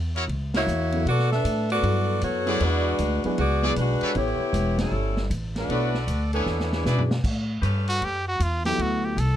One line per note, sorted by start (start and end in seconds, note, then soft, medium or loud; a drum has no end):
0.00 0.27 E2 medium
0.15 0.24 E4 medium
0.15 0.24 F#4 medium
0.15 0.24 A#4 medium
0.15 0.24 C#5 medium
0.15 ride soft
0.28 0.66 C#2 medium
0.28 ride medium
0.53 1.04 A#3 medium
0.53 0.63 E4 medium
0.53 1.04 E4 medium
0.53 0.63 F#4 medium
0.53 1.04 F#4 medium
0.53 0.63 A#4 medium
0.53 0.63 C#5 medium
0.53 1.04 C#5 loud
0.53 snare medium
0.53 ride medium
0.67 1.05 E2 medium
0.67 hi-hat pedal medium
0.92 1.05 F#3 medium
0.92 1.05 B3 soft
0.92 1.05 E4 medium
0.92 1.06 A4 medium
0.92 ride soft
1.05 1.43 B2 medium
1.05 1.32 B3 medium
1.05 1.32 F#4 medium
1.05 1.31 A4 medium
1.05 1.32 D5 loud
1.05 ride medium
1.19 snare soft
1.32 1.68 D4 medium
1.32 1.68 A4 medium
1.32 1.68 B4 medium
1.32 1.68 E5 loud
1.32 snare soft
1.44 1.82 A2 medium
1.44 hi-hat pedal medium
1.44 ride medium
1.70 2.20 B3 medium
1.70 2.20 F#4 medium
1.70 2.20 A4 medium
1.70 2.20 D5 medium
1.70 ride soft
1.83 2.21 G2 medium
1.83 2.42 F#3 medium
1.83 2.42 B3 soft
1.83 2.42 E4 soft
1.83 2.42 A4 medium
1.83 ride medium
2.21 2.59 F#2 medium
2.21 2.62 B3 medium
2.21 2.62 F#4 medium
2.21 2.62 A4 medium
2.21 2.62 C#5 loud
2.21 hi-hat pedal medium
2.21 ride medium
2.46 2.59 F#3 medium
2.46 2.59 B3 medium
2.46 2.96 E4 medium
2.46 2.59 E4 medium
2.46 2.96 F#4 medium
2.46 2.96 G#4 medium
2.46 2.60 G#4 medium
2.46 2.96 D5 loud
2.46 ride soft
2.60 2.98 E2 medium
2.60 3.24 G#3 medium
2.60 3.25 D4 loud
2.60 3.24 F#4 loud
2.60 3.24 B4 loud
2.60 ride medium
2.98 3.22 D2 medium
2.98 hi-hat pedal medium
2.98 ride medium
3.24 3.37 F#3 medium
3.24 3.38 G#3 medium
3.24 3.37 B3 medium
3.24 3.38 D4 medium
3.24 3.37 E4 medium
3.24 3.38 F#4 medium
3.24 3.37 G#4 medium
3.24 3.38 B4 medium
3.24 muted upright bass stroke soft
3.24 ride soft
3.38 3.76 C#2 medium
3.38 3.74 B3 medium
3.38 3.75 F#4 medium
3.38 3.75 G#4 medium
3.38 3.75 D5 loud
3.38 ride medium
3.62 3.75 F#3 medium
3.62 3.75 B3 medium
3.62 3.72 E4 medium
3.62 3.75 E4 medium
3.62 3.72 F#4 medium
3.62 3.72 G#4 medium
3.62 3.76 G#4 medium
3.62 3.72 D5 loud
3.76 4.00 B1 medium
3.76 4.13 G#3 medium
3.76 4.13 D4 medium
3.76 4.13 F#4 medium
3.76 4.13 B4 medium
3.76 hi-hat pedal medium
3.76 ride medium
4.01 4.10 G4 medium
4.01 4.10 A4 medium
4.01 4.11 B4 medium
4.01 4.10 C#5 medium
4.01 muted upright bass stroke soft
4.01 ride soft
4.15 4.38 A1 medium
4.15 4.38 B3 medium
4.15 4.79 B3 loud
4.15 4.38 E4 medium
4.15 4.78 E4 medium
4.15 4.79 G4 loud
4.15 4.38 A4 medium
4.15 4.79 C#5 loud
4.15 4.38 C#5 medium
4.15 ride medium
4.40 muted upright bass stroke soft
4.53 4.91 E1 medium
4.53 hi-hat pedal medium
4.53 ride medium
4.78 5.28 G3 medium
4.78 5.28 C#4 medium
4.78 5.28 E4 medium
4.78 5.28 A4 medium
4.78 snare medium
4.78 ride medium
4.92 5.29 G1 medium
5.17 snare medium
5.30 5.68 A1 medium
5.30 hi-hat pedal medium
5.30 ride medium
5.56 6.00 A3 medium
5.56 6.00 D4 medium
5.56 6.00 F#4 medium
5.56 6.00 B4 medium
5.56 snare soft
5.56 ride soft
5.69 6.07 B1 medium
5.69 5.92 B3 medium
5.69 5.92 E4 medium
5.69 6.28 F#4 medium
5.69 6.28 A4 medium
5.69 5.92 A4 medium
5.69 6.28 B4 medium
5.69 5.93 C#5 medium
5.69 6.28 D5 medium
5.69 ride medium
5.94 snare soft
6.07 6.45 D2 medium
6.07 hi-hat pedal medium
6.07 ride medium
6.32 6.69 E3 medium
6.32 6.69 B3 medium
6.32 6.69 D4 medium
6.32 6.83 E4 medium
6.32 6.69 A4 medium
6.32 6.83 B4 medium
6.32 6.83 C#5 medium
6.32 6.83 G#5 medium
6.32 ride soft
6.46 6.84 E2 medium
6.46 snare soft
6.60 snare medium
6.72 7.11 E3 medium
6.72 7.11 B3 medium
6.72 7.11 D4 medium
6.72 7.11 G#4 medium
6.72 snare medium
6.85 7.23 B2 medium
6.85 7.08 G#3 soft
6.85 7.08 C#4 soft
6.85 7.02 E4 medium
6.85 7.08 F#4 soft
6.85 7.02 G#4 medium
6.85 7.02 B4 medium
6.85 7.09 B4 medium
6.85 7.02 D5 medium
6.85 snare medium
6.85 hi-hat pedal medium
6.98 floor tom medium
7.11 snare medium
7.24 7.61 A2 medium
7.24 kick medium
7.24 crash medium
7.62 8.00 G2 medium
7.62 8.21 A3 medium
7.62 8.21 C#4 medium
7.62 8.21 G4 medium
7.62 8.21 B4 loud
7.62 hi-hat pedal medium
7.62 ride medium
7.88 8.06 F#4 medium
7.88 ride soft
8.02 8.39 F#2 medium
8.02 8.27 G4 medium
8.02 ride medium
8.28 8.44 F#4 medium
8.40 8.77 E2 medium
8.40 8.65 F4 medium
8.40 hi-hat pedal medium
8.40 ride medium
8.65 9.15 F#3 medium
8.65 9.15 B3 medium
8.65 9.15 E4 medium
8.65 8.83 G4 loud
8.65 9.16 A4 medium
8.65 snare medium
8.65 ride medium
8.78 9.16 D2 medium
8.78 9.06 F#4 medium
8.78 ride medium
9.05 9.21 G4 medium
9.17 9.37 C2 medium
9.17 9.37 A4 medium
9.17 hi-hat pedal medium
9.17 ride medium